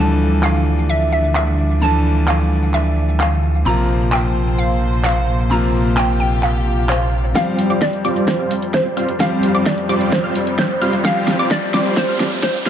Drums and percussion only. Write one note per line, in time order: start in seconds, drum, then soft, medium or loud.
0.21 cabasa medium
0.32 cabasa soft
0.43 clap loud
0.67 cabasa medium
0.79 cabasa soft
0.90 cabasa soft
1.13 cabasa medium
1.25 cabasa soft
1.35 clap loud
1.59 cabasa medium
1.71 cabasa soft
2.06 cabasa medium
2.17 cabasa soft
2.28 clap loud
2.28 cabasa soft
2.52 cabasa medium
2.63 cabasa soft
2.74 clap medium
2.98 cabasa medium
3.09 cabasa soft
3.20 clap loud
3.20 cabasa soft
3.44 cabasa medium
3.56 cabasa soft
3.90 cabasa medium
4.02 cabasa soft
4.12 clap loud
4.12 cabasa soft
4.36 cabasa medium
4.48 cabasa soft
4.59 cabasa soft
4.82 cabasa medium
4.94 cabasa soft
5.05 clap loud
5.05 cabasa soft
5.29 cabasa medium
5.40 cabasa soft
5.75 cabasa medium
5.86 cabasa soft
5.97 clap loud
5.97 cabasa soft
6.21 cabasa medium
6.32 cabasa soft
6.43 clap medium
6.43 cabasa soft
6.67 cabasa medium
6.79 cabasa soft
6.89 clap loud
6.89 cabasa soft
7.13 cabasa medium
7.25 cabasa soft
7.35 kick loud
7.35 snare soft
7.35 closed hi-hat medium
7.35 cabasa soft
7.59 open hi-hat loud
7.59 cabasa medium
7.70 closed hi-hat medium
7.70 cabasa soft
7.82 kick loud
7.82 snare medium
7.82 closed hi-hat medium
7.82 cabasa soft
7.93 closed hi-hat soft
8.05 open hi-hat medium
8.05 cabasa medium
8.16 closed hi-hat medium
8.16 cabasa soft
8.28 kick loud
8.28 snare medium
8.28 closed hi-hat medium
8.28 cabasa soft
8.51 open hi-hat loud
8.51 cabasa medium
8.62 closed hi-hat medium
8.62 cabasa soft
8.74 kick loud
8.74 snare medium
8.74 closed hi-hat medium
8.74 cabasa soft
8.97 open hi-hat medium
8.97 cabasa medium
9.09 closed hi-hat medium
9.09 cabasa soft
9.20 kick loud
9.20 snare medium
9.20 closed hi-hat medium
9.20 cabasa soft
9.43 open hi-hat loud
9.43 cabasa medium
9.55 closed hi-hat medium
9.55 cabasa soft
9.66 kick loud
9.66 snare medium
9.66 closed hi-hat medium
9.66 cabasa soft
9.78 closed hi-hat soft
9.89 open hi-hat loud
9.89 cabasa medium
10.01 closed hi-hat medium
10.01 cabasa soft
10.12 kick loud
10.12 snare medium
10.12 closed hi-hat medium
10.12 cabasa soft
10.35 open hi-hat loud
10.35 cabasa medium
10.47 closed hi-hat medium
10.47 cabasa soft
10.58 kick loud
10.58 snare medium
10.58 closed hi-hat medium
10.58 cabasa soft
10.82 open hi-hat medium
10.82 cabasa medium
10.93 closed hi-hat medium
10.93 cabasa soft
11.05 kick loud
11.05 snare medium
11.05 closed hi-hat medium
11.05 cabasa soft
11.28 snare medium
11.28 open hi-hat loud
11.28 cabasa medium
11.39 closed hi-hat medium
11.39 cabasa soft
11.51 kick loud
11.51 snare medium
11.51 closed hi-hat medium
11.51 cabasa soft
11.62 closed hi-hat soft
11.74 snare medium
11.74 open hi-hat loud
11.74 cabasa medium
11.85 closed hi-hat medium
11.85 cabasa soft
11.97 kick loud
11.97 snare medium
11.97 closed hi-hat medium
11.97 cabasa soft
12.20 snare medium
12.20 open hi-hat loud
12.20 cabasa medium
12.32 closed hi-hat medium
12.32 cabasa soft
12.43 kick loud
12.43 snare medium
12.43 closed hi-hat medium
12.43 cabasa soft
12.66 snare medium
12.66 open hi-hat loud